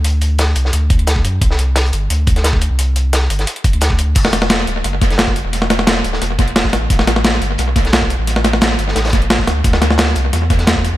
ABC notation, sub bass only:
X:1
M:4/4
L:1/16
Q:1/4=175
K:Em
V:1 name="Sub bass" clef=bass
D,,6 C,,2 D,,6 F,,2 | C,,6 G,,,2 D,,6- D,, C,,- | C,,6 G,,,2 z3 D,,4- D,, | E,,,6 D,,,2 F,,,6- F,,, E,,,- |
E,,,6 D,,,2 E,,,6 A,,,2 | A,,,6 G,,,2 B,,,6- B,,, A,,,- | A,,,6 G,,,2 A,,,6 D,,2 | D,,6 C,,2 E,,6- E,, D,, |]